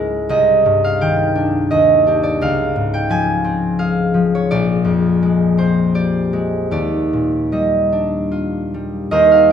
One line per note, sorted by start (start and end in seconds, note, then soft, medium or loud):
0.00 0.32 C#2 medium
0.00 0.33 G#2 soft
0.00 0.33 G#3 soft
0.00 0.33 C#4 soft
0.00 0.34 E4 soft
0.00 0.33 G#4 medium
0.00 0.34 A#4 medium
0.00 0.34 B4 medium
0.00 0.34 C#5 medium
0.29 1.73 C2 medium
0.29 1.69 D#5 medium
0.66 1.73 G2 soft
0.84 1.13 F5 medium
1.01 1.74 D#3 soft
1.01 2.44 G5 medium
1.35 2.05 D4 soft
1.71 2.44 D#2 medium
1.71 2.44 D#5 medium
2.07 2.44 D4 soft
2.07 2.44 G4 soft
2.23 2.44 D5 medium
2.41 4.51 C#2 soft
2.41 3.78 F5 medium
2.76 4.51 G#2 soft
2.94 3.22 G5 medium
3.10 4.13 F3 soft
3.10 6.75 G#5 medium
3.44 5.57 C4 soft
3.79 6.75 G#4 soft
3.79 7.69 F5 medium
4.14 8.04 F3 soft
4.35 4.53 C#5 medium
4.51 6.76 A#1 medium
4.51 5.94 D5 medium
4.85 6.75 F2 soft
5.23 6.32 G#3 soft
5.58 6.76 C4 soft
5.58 6.76 C5 medium
5.95 9.52 G4 soft
5.95 6.71 D5 medium
6.33 6.75 G#3 soft
6.71 9.10 D#2 soft
6.71 9.16 D5 medium
7.13 9.16 A#2 soft
7.52 8.73 G3 soft
7.52 9.10 D#5 soft
7.92 9.15 D4 soft
8.31 9.52 F4 soft
8.74 9.52 G3 soft
9.11 9.52 D#2 soft
9.11 9.52 A#4 medium
9.11 9.52 C5 soft
9.11 9.52 D#5 medium
9.32 9.52 F5 medium